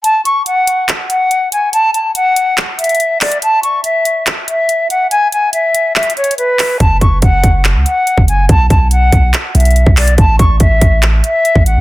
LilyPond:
<<
  \new Staff \with { instrumentName = "Flute" } { \time 4/4 \key fis \minor \tempo 4 = 142 a''8 cis'''8 fis''4 r8 fis''4 gis''8 | a''8 a''8 fis''4 r8 e''4 d''8 | a''8 cis'''8 e''4 r8 e''4 fis''8 | gis''8 gis''8 e''4 e''8 cis''8 b'4 |
a''8 cis'''8 fis''4 r8 fis''4 gis''8 | a''8 a''8 fis''4 r8 e''4 d''8 | a''8 cis'''8 e''4 r8 e''4 fis''8 | }
  \new Staff \with { instrumentName = "808-style bass" } { \clef bass \time 4/4 \key fis \minor r1 | r1 | r1 | r1 |
fis,,8 fis,,8 fis,,8 fis,,8. cis,16 r8. fis,,8. | b,,8 b,,4 b,,8 r8 b,,8. b,,8. | a,,8 a,,8 a,,8 a,,4 r8. a,,8 a,16 | }
  \new DrumStaff \with { instrumentName = "Drums" } \drummode { \time 4/4 hh8 hh8 hh8 hh8 <hc hh>8 hh8 hh8 hh8 | hh8 hh8 hh8 hh8 <hc hh>8 hh32 hh32 hh32 hh32 hh8 <hc hh hho>16 hh16 | hh8 hh8 hh8 hh8 <hc hh>8 hh8 hh8 hh8 | hh8 hh8 hh8 hh8 \tuplet 3/2 { <hc hh>16 hh16 hh16 hh16 hh16 hh16 } hh8 <hc hho>8 |
<hh bd>8 <hh bd>8 <hh bd>8 <hh bd>8 <hc hh>8 hh8 hh16 bd16 hh8 | <hh bd>8 <hh bd>8 hh8 <hh bd>8 <hc hh>8 hh32 hh32 hh32 hh32 hh16 bd16 <hc hh hho>16 hh16 | <hh bd>8 <hh bd>8 <hh bd>8 <hh bd>8 <hc hh>8 hh8 hh16 bd16 hh8 | }
>>